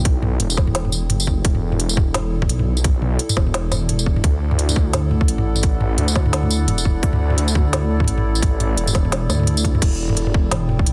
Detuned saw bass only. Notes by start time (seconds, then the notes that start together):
Already playing: B1
0.40 E1
1.10 F#1
1.45 E1
2.50 B1
3.37 E1
4.24 D2
5.28 A1
5.98 D2
6.68 E1
7.03 D2
8.08 A1
8.77 E1
9.29 D2
9.82 E1
10.87 B1